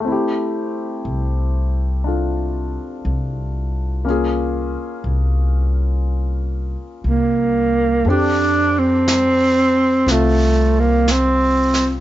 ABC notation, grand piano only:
X:1
M:4/4
L:1/8
Q:"Swing" 1/4=60
K:F
V:1 name="Grand piano"
[A,CEG]4 [DFA]4 | [B,_DF_A]8 | [CDGA]4 [CF]4 |]